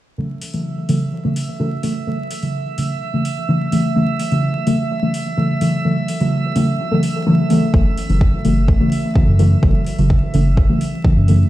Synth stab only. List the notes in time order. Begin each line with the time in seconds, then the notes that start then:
0.18 C#3 E3 F#3 A3
0.54 C#3 E3 F#3 A3
0.89 C#3 E3 F#3 A3
1.24 C#3 E3 F#3 A3
1.60 C#3 E3 F#3 A3
1.83 C#3 E3 F#3 A3
2.07 C#3 E3 F#3 A3
2.43 C#3 E3 F#3 A3
2.78 C#3 E3 F#3 A3
3.13 C#3 E3 F#3 A3
3.49 C#3 E3 F#3 A3
3.72 C#3 E3 F#3 A3
3.96 C#3 E3 F#3 A3
4.31 C#3 E3 F#3 A3
4.67 C#3 E3 F#3 A3
5.02 C#3 E3 F#3 A3
5.37 C#3 E3 F#3 A3
5.61 C#3 E3 F#3 A3
5.85 C#3 E3 F#3 A3
6.20 C#3 E3 F#3 A3
6.56 C#3 E3 F#3 A3
6.91 C#3 E3 F#3 A3
7.26 C#3 E3 F#3 A3
7.50 C#3 E3 F#3 A3
7.74 C#3 E3 F#3 A3
8.09 C#3 E3 F#3 A3
8.45 C#3 E3 F#3 A3
8.80 C#3 E3 F#3 A3
9.16 C#3 E3 F#3 A3
9.39 C#3 E3 F#3 A3
9.63 C#3 E3 F#3 A3
9.98 C#3 E3 F#3 A3
10.34 C#3 E3 F#3 A3
10.69 C#3 E3 F#3 A3
11.04 C#3 E3 F#3 A3
11.28 C#3 E3 F#3 A3